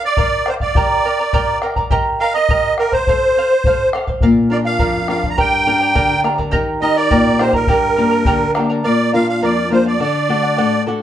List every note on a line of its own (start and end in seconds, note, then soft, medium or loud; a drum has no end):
0.03 0.17 D5 soft
0.03 0.49 D5 medium
0.03 0.17 F5 soft
0.17 0.45 A#4 medium
0.17 0.46 D5 medium
0.17 0.47 F5 medium
0.17 bombo low medium
0.46 0.61 A#4 medium
0.46 0.54 C5 medium
0.46 0.62 D5 medium
0.46 0.60 F5 medium
0.46 bombo rim medium
0.60 1.59 D5 medium
0.60 0.76 D5 soft
0.60 0.76 F5 soft
0.60 bombo low medium
0.75 1.05 G4 medium
0.75 1.04 A#4 medium
0.75 1.04 D5 medium
0.75 1.03 G5 medium
0.75 1.05 A#5 medium
0.75 bombo low medium
1.04 1.19 A#4 medium
1.04 1.19 D5 medium
1.04 1.19 G5 medium
1.04 1.18 A#5 medium
1.19 1.33 A#4 soft
1.19 1.33 D5 soft
1.19 1.33 A#5 medium
1.33 1.62 G4 medium
1.33 1.62 A#4 medium
1.33 1.62 D5 medium
1.33 1.61 G5 medium
1.33 1.62 A#5 medium
1.33 bombo low medium
1.62 1.77 A#4 medium
1.62 1.76 D5 medium
1.62 1.76 G5 medium
1.62 1.75 A#5 medium
1.62 bombo rim medium
1.76 1.90 A#4 soft
1.76 1.91 D5 medium
1.76 1.91 A#5 medium
1.76 bombo low medium
1.90 2.20 G4 medium
1.90 2.20 A#4 medium
1.90 2.20 D#5 medium
1.90 2.19 G5 medium
1.90 2.20 A#5 loud
1.90 bombo low medium
2.20 2.35 A#4 medium
2.20 2.34 D#5 medium
2.20 2.33 F5 loud
2.20 2.34 G5 medium
2.20 2.34 A#5 medium
2.34 2.49 A#4 soft
2.34 2.74 D#5 loud
2.34 2.49 D#5 soft
2.34 2.49 A#5 medium
2.49 2.78 G4 medium
2.49 2.78 A#4 medium
2.49 2.78 D#5 medium
2.49 2.78 G5 medium
2.49 2.79 A#5 medium
2.49 bombo low medium
2.78 2.93 A#4 medium
2.78 2.92 D#5 medium
2.78 2.93 G5 medium
2.78 2.92 A#5 medium
2.78 bombo rim medium
2.92 3.08 A#4 soft
2.92 3.89 C5 medium
2.92 3.07 D#5 medium
2.92 3.07 A#5 medium
2.92 bombo low medium
3.07 3.36 A4 medium
3.07 3.36 C5 medium
3.07 3.37 F5 medium
3.07 bombo low medium
3.37 3.51 A4 medium
3.37 3.51 C5 medium
3.37 3.50 F5 medium
3.52 3.65 C5 soft
3.52 3.65 F5 soft
3.64 3.93 A4 medium
3.64 3.93 C5 medium
3.64 3.94 F5 medium
3.64 bombo low medium
3.93 4.08 A4 medium
3.93 4.07 C5 medium
3.93 4.06 F5 medium
3.93 bombo rim medium
4.07 4.23 C5 soft
4.07 4.22 F5 medium
4.07 bombo low medium
4.21 4.79 A#2 medium
4.21 4.49 A#4 medium
4.21 4.50 D5 medium
4.21 4.50 F5 medium
4.21 bombo low medium
4.50 4.97 D4 medium
4.50 4.97 F4 soft
4.50 4.65 A#4 medium
4.50 4.98 A#4 medium
4.50 4.58 D5 medium
4.50 4.65 D5 medium
4.50 4.64 F5 medium
4.65 4.79 D5 soft
4.65 4.79 F5 medium
4.65 5.08 F5 medium
4.79 5.36 F2 medium
4.79 5.07 A#4 medium
4.79 5.08 D5 medium
4.79 5.09 F5 medium
4.79 bombo low medium
5.08 5.32 D4 medium
5.08 5.32 F4 soft
5.08 5.23 A#4 medium
5.08 5.32 A#4 medium
5.08 5.24 D5 medium
5.08 5.29 F5 medium
5.08 5.23 F5 medium
5.08 bombo rim medium
5.23 5.37 D5 soft
5.23 5.37 F5 medium
5.23 bombo low medium
5.30 5.37 A#5 medium
5.38 5.94 G2 medium
5.38 5.66 G4 medium
5.38 5.65 A#4 medium
5.38 5.66 D5 medium
5.38 5.65 G5 medium
5.38 6.21 G5 loud
5.38 5.66 A#5 medium
5.38 bombo low medium
5.66 6.13 D4 soft
5.66 6.13 G4 soft
5.66 5.80 A#4 medium
5.66 6.13 A#4 medium
5.66 5.80 D5 medium
5.66 5.81 G5 medium
5.66 5.79 A#5 medium
5.80 5.94 A#4 soft
5.80 5.94 D5 medium
5.80 5.94 A#5 medium
5.95 6.51 D3 medium
5.95 6.24 G4 medium
5.95 6.23 A#4 medium
5.95 6.23 D5 medium
5.95 6.22 G5 medium
5.95 6.24 A#5 medium
5.95 bombo low medium
6.24 6.47 D4 medium
6.24 6.47 G4 soft
6.24 6.38 A#4 medium
6.24 6.47 A#4 medium
6.24 6.38 D5 medium
6.24 6.38 G5 medium
6.24 6.37 A#5 medium
6.24 bombo rim soft
6.38 6.51 A#4 soft
6.38 6.52 D5 medium
6.38 6.51 A#5 medium
6.38 bombo low medium
6.51 7.09 D#3 medium
6.51 6.81 G4 medium
6.51 6.81 A#4 loud
6.51 6.82 D#5 medium
6.51 6.80 G5 medium
6.51 6.82 A#5 medium
6.51 bombo low medium
6.81 7.28 D#4 medium
6.81 7.29 G4 soft
6.81 6.97 A#4 medium
6.81 7.29 A#4 medium
6.81 6.96 D#5 loud
6.81 6.96 D#5 medium
6.81 6.96 G5 medium
6.81 6.95 A#5 medium
6.96 7.10 A#4 soft
6.96 7.41 D5 loud
6.96 7.10 D#5 medium
6.96 7.10 A#5 medium
7.10 7.67 A#2 medium
7.10 7.39 G4 medium
7.10 7.38 A#4 medium
7.10 7.39 D#5 medium
7.10 7.38 G5 medium
7.10 7.39 A#5 medium
7.10 bombo low medium
7.39 7.63 D#4 medium
7.39 7.63 G4 soft
7.39 7.53 A#4 medium
7.39 7.64 A#4 medium
7.39 7.53 C5 medium
7.39 7.52 D#5 medium
7.39 7.54 G5 medium
7.39 7.52 A#5 medium
7.39 bombo rim medium
7.53 8.51 A#4 medium
7.53 7.67 A#4 soft
7.53 7.68 D#5 soft
7.53 7.68 A#5 medium
7.53 bombo low medium
7.67 8.25 G2 medium
7.67 7.97 G4 medium
7.67 7.96 A#4 medium
7.67 7.96 D5 medium
7.67 7.95 G5 medium
7.67 7.97 A#5 medium
7.67 bombo low medium
7.96 8.44 A#3 soft
7.96 8.44 D4 soft
7.96 8.45 G4 medium
7.96 8.11 A#4 medium
7.96 8.11 D5 medium
7.96 8.11 G5 medium
7.96 8.10 A#5 medium
8.11 8.26 A#4 soft
8.11 8.25 D5 soft
8.11 8.26 A#5 medium
8.25 8.83 D3 medium
8.25 8.55 G4 medium
8.25 8.54 A#4 medium
8.25 8.54 D5 medium
8.25 8.53 G5 medium
8.25 8.55 A#5 medium
8.25 bombo low medium
8.54 8.79 A#3 soft
8.54 8.79 D4 soft
8.54 8.79 G4 medium
8.54 8.70 A#4 medium
8.54 8.69 D5 medium
8.54 8.69 G5 medium
8.54 8.68 A#5 medium
8.54 bombo rim medium
8.69 8.83 A#4 soft
8.69 8.83 D5 medium
8.69 8.84 A#5 medium
8.84 9.41 A#2 medium
8.84 9.12 A#4 medium
8.84 9.11 D5 medium
8.84 9.13 D5 medium
8.84 9.13 F5 medium
9.13 9.60 A#3 soft
9.13 9.60 D4 soft
9.13 9.60 F4 medium
9.13 9.28 A#4 medium
9.13 9.28 D5 medium
9.13 9.27 F5 loud
9.13 9.27 F5 medium
9.28 9.41 D5 soft
9.28 9.42 F5 soft
9.28 9.42 F5 medium
9.42 9.98 F2 medium
9.42 9.69 A#4 medium
9.42 9.70 D5 medium
9.42 9.69 D5 medium
9.42 9.71 F5 medium
9.70 9.94 A#3 soft
9.70 9.94 D4 soft
9.70 9.94 F4 medium
9.70 9.85 A#4 soft
9.70 9.85 C5 medium
9.70 9.86 D5 medium
9.70 9.85 F5 medium
9.86 10.00 D5 medium
9.86 9.99 D5 soft
9.86 10.00 F5 medium
10.00 10.56 D3 medium
10.00 10.28 A4 medium
10.00 10.28 D5 medium
10.00 10.83 D5 medium
10.00 10.29 F#5 medium
10.29 10.75 A3 soft
10.29 10.75 D4 soft
10.29 10.75 F#4 medium
10.29 10.43 A4 medium
10.29 10.43 D5 medium
10.29 10.42 F#5 medium
10.43 10.57 D5 soft
10.43 10.57 F#5 medium
10.58 11.02 A2 medium
10.58 10.86 A4 medium
10.58 10.87 D5 medium
10.58 10.87 F#5 medium
10.86 11.02 A3 soft
10.86 11.02 D4 soft
10.86 11.02 F#4 medium
10.86 11.01 A4 medium
10.86 11.02 D5 medium
10.86 11.00 F#5 medium